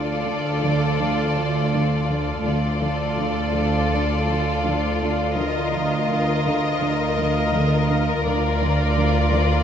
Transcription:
Already playing: double bass section D2, cello section D2 D3, violin section F4 A4 D5, glass harmonica A4 D5 F5
0.26 cello section D3
0.63 cello section D3
0.99 cello section D3
1.36 cello section D3
1.73 cello section D3
2.09 cello section D3
2.45 cello section D2 D3, double bass section D2, violin section F4 A4 D5, glass harmonica A4 D5 F5
2.82 cello section D3
3.19 cello section D3
3.55 cello section D3
3.92 cello section D3
4.29 cello section D3
4.66 cello section D3
5.02 cello section D3
5.38 cello section D3, violin section A#4 D#5, glass harmonica A#4 D#5
5.74 cello section D3
6.10 cello section D3
6.46 cello section D3
6.82 cello section D3
7.18 cello section D3
7.54 cello section D3
7.90 cello section D3
8.26 double bass section D2, cello section D2 D3, violin section F4 D5, glass harmonica D5 F5
8.61 cello section D3
8.98 cello section D3
9.34 cello section D3

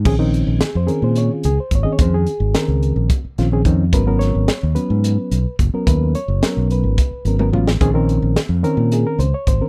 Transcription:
0.05 fingered electric bass A#1, reed electric piano D#3 C4 C#4 G#4, kick, crash
0.19 reed electric piano D#3 C4 C#4 D#4
0.34 closed hi-hat
0.47 fingered electric bass A#1
0.61 reed electric piano G#4, snare, closed hi-hat
0.75 fingered electric bass F2, reed electric piano C5
0.87 reed electric piano D#3 C4 C#4 G#4 A#4, closed hi-hat
1.02 fingered electric bass A#2, reed electric piano C5
1.15 reed electric piano C#5, closed hi-hat
1.33 reed electric piano F4
1.43 fingered electric bass C#2, reed electric piano G#4, closed hi-hat
1.60 reed electric piano C5
1.71 fingered electric bass G#1, kick, closed hi-hat
1.75 reed electric piano C#5
1.83 reed electric piano D#3 C4 C#4 G#4 D#5, muted fingered electric bass stroke
1.92 reed electric piano C#5
1.99 fingered electric bass F2, reed electric piano C5, kick, closed hi-hat
2.14 reed electric piano G#4
2.27 closed hi-hat
2.40 fingered electric bass G#1
2.54 reed electric piano D#3 C4 C#4 A#4, snare, closed hi-hat
2.68 fingered electric bass C#2
2.83 closed hi-hat
2.96 fingered electric bass A#1
3.10 kick, closed hi-hat
3.25 muted fingered electric bass stroke
3.38 fingered electric bass A#1, reed electric piano D#3 C4 C#4 F4, snare, closed hi-hat
3.52 reed electric piano D#3 C4 C#4 G#4
3.65 fingered electric bass F2, reed electric piano D#3 C4 C#4 D#4, kick, closed hi-hat
3.93 fingered electric bass G#1, reed electric piano F#3 B3 C#4 A#4 B4, kick, closed hi-hat
4.07 reed electric piano F#3 B3 C#4 A#4
4.19 reed electric piano C#5, snare, closed hi-hat
4.35 fingered electric bass G#1
4.48 snare, closed hi-hat
4.63 fingered electric bass D#2
4.75 reed electric piano F#3 B3 C#4 B4, closed hi-hat
4.90 fingered electric bass G#2
5.04 closed hi-hat
5.31 fingered electric bass B1, closed hi-hat
5.59 fingered electric bass F#1, kick, closed hi-hat
5.74 reed electric piano F#3 B3 C#4 A#4, muted fingered electric bass stroke
5.87 fingered electric bass D#2, reed electric piano B4, kick, closed hi-hat
6.15 reed electric piano C#5, closed hi-hat
6.28 fingered electric bass F#1
6.42 reed electric piano F#3 B3 C#4 A#4, snare, closed hi-hat
6.57 fingered electric bass B1
6.71 reed electric piano B4, closed hi-hat
6.84 fingered electric bass G#1
6.98 kick, closed hi-hat
7.11 muted fingered electric bass stroke
7.25 fingered electric bass G#1, reed electric piano F#3 B3 C#4 A#4, closed hi-hat
7.39 reed electric piano F#3 B3 C#4 A#4, high tom
7.53 fingered electric bass A1, reed electric piano F#3 B3 C#4 F4, mid tom
7.67 snare
7.81 fingered electric bass A#1, reed electric piano D#3 C4 C#4 G#4, kick, closed hi-hat
7.94 reed electric piano D#3 C4 C#4 A#4
8.09 closed hi-hat
8.22 fingered electric bass A#1
8.36 snare, closed hi-hat
8.49 fingered electric bass F2
8.63 reed electric piano D#3 C4 C#4 A#4, closed hi-hat
8.77 fingered electric bass A#2
8.92 reed electric piano G#4, closed hi-hat
9.07 reed electric piano A#4
9.19 fingered electric bass C#2, reed electric piano C5, closed hi-hat
9.34 reed electric piano C#5
9.47 fingered electric bass G#1, reed electric piano C5, kick, closed hi-hat
9.60 reed electric piano D#3 C4 C#4 A#4, muted fingered electric bass stroke

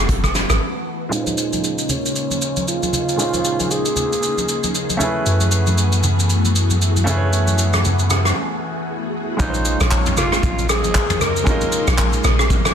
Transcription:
Already playing: string machine E3 A3 B3 F#4
0.09 log drum bass F#1, kick, hi-hat pedal, shaker
0.24 kick, cross-stick, high conga, shaker
0.35 snare, open hi-hat, shaker
0.50 log drum bass G#1, cross-stick, high conga, shaker
1.09 grand piano A#2 G#3 C#4, string machine C#3 A#3 D#4 G#4 C5, shaker
1.13 grand piano D#4 F4 B4, alto saxophone D#4
1.22 grand piano C5
1.27 high conga, shaker
1.38 shaker
1.53 high conga, shaker
1.64 shaker
1.78 shaker
1.89 alto saxophone C#4, low conga, shaker
2.06 shaker
2.16 shaker
2.31 high conga, shaker
2.42 shaker
2.56 high conga, shaker
2.68 alto saxophone F4, shaker
2.83 high conga, shaker
2.93 low conga, shaker
3.09 shaker
3.16 grand piano A#2 G#3 C#4, shaker
3.20 grand piano D#4 F4 C5
3.34 high conga, shaker
3.45 shaker
3.60 high conga, shaker
3.71 alto saxophone G#4, shaker
3.85 shaker
3.96 low conga, shaker
4.13 shaker
4.23 shaker
4.38 high conga, shaker
4.49 shaker
4.63 high conga, shaker
4.75 shaker
4.90 high conga, shaker
4.97 string machine E3 A3 B3 F#4, grand piano A3 C#4 E4, low conga, shaker
5.02 grand piano G#4 B4
5.26 sub bass F#2, shaker
5.40 high conga, shaker
5.51 shaker
5.67 high conga, shaker
5.78 shaker
5.92 shaker
6.03 low conga, shaker
6.19 shaker
6.30 shaker
6.45 high conga, shaker
6.55 shaker
6.70 high conga, shaker
6.82 shaker
6.96 high conga, shaker
7.04 grand piano A3 C#4 E4, low conga, shaker
7.09 grand piano G#4 B4
7.17 grand piano C#5
7.33 shaker
7.47 high conga, shaker
7.58 shaker
7.73 cross-stick, high conga, shaker
7.85 low conga, shaker
7.99 shaker
8.10 cross-stick, low conga, shaker
8.25 cross-stick, shaker
9.37 log drum bass A#1, string machine C#3 G#3 A#3 D#4 C5, grand piano G#3 C#4 D#4, alto saxophone D#4, kick, shaker
9.42 grand piano F4 B4
9.50 grand piano C5
9.54 high conga, shaker
9.65 shaker
9.80 log drum bass A#1, alto saxophone C#4, cross-stick, high conga, shaker
9.91 kick, clap, shaker
10.06 mid tom, shaker
10.17 log drum bass G#1, alto saxophone F4, cross-stick, low conga, shaker
10.32 cross-stick, shaker
10.43 log drum bass A#1, kick, shaker
10.58 high conga, shaker
10.69 alto saxophone G#4, cross-stick, shaker
10.84 log drum bass G#1, high conga, shaker
10.95 kick, clap, shaker
11.10 mid tom, high conga, shaker
11.20 log drum bass C#2, alto saxophone A#4, cross-stick, low conga, shaker
11.36 shaker
11.44 grand piano G#3 C#4 D#4, kick, shaker
11.49 grand piano F4 D#5
11.61 high conga, shaker
11.72 shaker
11.87 log drum bass A#1, cross-stick, high conga, shaker
11.98 kick, clap, shaker
12.13 shaker
12.24 log drum bass A#1, cross-stick, low conga, shaker
12.39 cross-stick, shaker
12.50 log drum bass G#1, kick, shaker
12.65 cross-stick, high conga, shaker

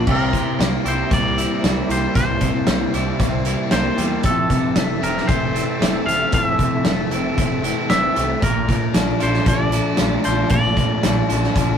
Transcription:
Already playing: clean electric guitar D5
0.06 picked electric bass C2, overdriven electric guitar C3, clean electric guitar E3, string machine E4 C5 A#5, kick, crash
0.11 clean electric guitar A#4
0.33 overdriven electric guitar C3, clean electric guitar E3, kick, closed hi-hat
0.58 picked electric bass C2, overdriven electric guitar G3 A#3, clean electric guitar A#3, snare, closed hi-hat
0.84 picked electric bass C2, overdriven electric guitar G3 E4, clean electric guitar G4, closed hi-hat
0.88 clean electric guitar C5
1.10 picked electric bass C2, overdriven electric guitar G3 A#3, clean electric guitar C4 D5, kick, closed hi-hat
1.35 clean electric guitar E3, overdriven electric guitar G3 E4, closed hi-hat
1.62 picked electric bass C2, overdriven electric guitar A#3 E4, clean electric guitar C4, snare, closed hi-hat
1.88 picked electric bass C2, overdriven electric guitar G3 A#3, clean electric guitar G4 C5, closed hi-hat
2.14 picked electric bass C2, overdriven electric guitar C3, clean electric guitar E3 C5, string machine A5, kick, closed hi-hat
2.41 overdriven electric guitar C3, clean electric guitar E3, kick, closed hi-hat
2.67 picked electric bass C2, overdriven electric guitar G3 A#3, clean electric guitar A#3, snare, closed hi-hat
2.93 picked electric bass C2, overdriven electric guitar G3 E4, clean electric guitar G4, closed hi-hat
3.19 picked electric bass C2, overdriven electric guitar G3 A#3, clean electric guitar C4, kick, closed hi-hat
3.45 clean electric guitar E3, overdriven electric guitar G3 E4, closed hi-hat
3.71 picked electric bass C2, overdriven electric guitar A#3 E4, clean electric guitar C4 C5, snare, closed hi-hat
3.98 picked electric bass E2, overdriven electric guitar G3 A#3, clean electric guitar G4, closed hi-hat
4.23 picked electric bass F1, overdriven electric guitar F2, clean electric guitar E3 A4, string machine E4 E5, kick, closed hi-hat
4.50 overdriven electric guitar C3, clean electric guitar E3, kick, closed hi-hat
4.76 picked electric bass F1, clean electric guitar E3, overdriven electric guitar E3 A3, snare, closed hi-hat
5.02 picked electric bass F1, overdriven electric guitar E3 C4, clean electric guitar C4 A#4, closed hi-hat
5.17 snare
5.28 picked electric bass F1, overdriven electric guitar E3 A3, clean electric guitar A3 C5, kick, closed hi-hat
5.54 clean electric guitar E3, overdriven electric guitar E3 C4, closed hi-hat
5.79 picked electric bass F1, clean electric guitar A3, overdriven electric guitar A3 C4, snare, closed hi-hat
6.05 picked electric bass F1, overdriven electric guitar E3 A3, clean electric guitar C4 F5, closed hi-hat
6.31 picked electric bass F1, overdriven electric guitar F2, clean electric guitar E3 F5, kick, closed hi-hat
6.45 clean electric guitar E5
6.57 overdriven electric guitar C3, clean electric guitar E3, kick, closed hi-hat
6.84 picked electric bass F1, clean electric guitar E3, overdriven electric guitar E3 A3, snare, closed hi-hat
7.10 picked electric bass F1, overdriven electric guitar E3 C4, clean electric guitar C4, closed hi-hat
7.37 picked electric bass F1, overdriven electric guitar E3 A3, clean electric guitar A3, kick, closed hi-hat
7.62 clean electric guitar E3, overdriven electric guitar E3 C4, closed hi-hat
7.89 picked electric bass F1, overdriven electric guitar A3 C4, clean electric guitar A3 E5, snare, closed hi-hat
8.15 picked electric bass C2, overdriven electric guitar E3 A3, clean electric guitar C4, closed hi-hat
8.42 picked electric bass A#1, overdriven electric guitar A#2, clean electric guitar A3 A#4, string machine D5 A5 A#5, kick, closed hi-hat
8.68 overdriven electric guitar A#2 F3, clean electric guitar A3, kick, closed hi-hat
8.93 picked electric bass A#1, overdriven electric guitar F3 D4, clean electric guitar A3, snare, closed hi-hat, tambourine
9.20 picked electric bass A#1, overdriven electric guitar A3 D4, clean electric guitar F4 C5, closed hi-hat
9.34 snare
9.46 picked electric bass A#1, overdriven electric guitar F3 D4, clean electric guitar D4 D5, kick, closed hi-hat
9.72 clean electric guitar A3, overdriven electric guitar A3 D4, closed hi-hat
9.97 picked electric bass A#1, overdriven electric guitar A3 F4, clean electric guitar D4, snare, closed hi-hat, tambourine
10.24 picked electric bass A#1, overdriven electric guitar F3 D4, clean electric guitar F4 C5, closed hi-hat
10.50 picked electric bass A#1, overdriven electric guitar A#2, clean electric guitar A3 D5, kick, closed hi-hat
10.76 overdriven electric guitar A#2 F3, clean electric guitar A3, kick, closed hi-hat
11.03 picked electric bass A#1, overdriven electric guitar F3 D4, clean electric guitar A3, snare, closed hi-hat, tambourine
11.28 picked electric bass A#1, overdriven electric guitar A3 D4, clean electric guitar F4, closed hi-hat
11.43 snare
11.54 picked electric bass A#1, overdriven electric guitar F3 D4, clean electric guitar D4 C5, kick, closed hi-hat

